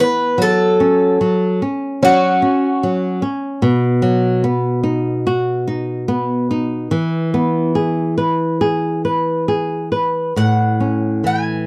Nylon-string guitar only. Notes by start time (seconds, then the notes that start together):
Already playing: B3
0.38 F#3
0.80 C#4
1.21 F#3
1.62 C#4
2.03 F#3
2.42 C#4
2.83 F#3
3.22 C#4
3.62 B2
4.02 F#3
4.44 B3
4.83 D#4
5.27 F#4
5.68 D#4
6.08 B3
6.51 D#4
6.91 E3
7.34 B3
7.75 G#4
8.18 B4
8.61 G#4
9.05 B4
9.48 G#4
9.92 B4
10.36 A2
10.80 C#4
11.24 E3